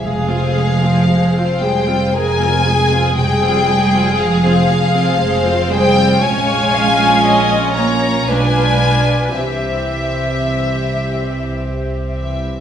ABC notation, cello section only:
X:1
M:3/4
L:1/8
Q:1/4=57
K:Fm
V:1 name="Cello section" clef=bass
F,3 G, A,2 | G,2 F,3 G, | A,3 B, ^G,2 | =E,4 z E, |]